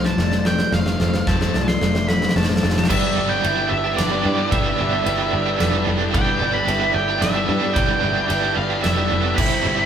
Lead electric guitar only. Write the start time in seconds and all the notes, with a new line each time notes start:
0.05 A5
0.47 G5
0.73 F5
1.27 A5
1.68 C6
2.08 B5
2.36 A5
2.90 E5
3.29 G5
3.69 E5
3.97 D5
4.51 E5
6.14 G5
6.53 B5
6.94 G5
7.21 E5
7.74 G5
8.28 G5
8.55 F5
8.83 E5
9.36 B5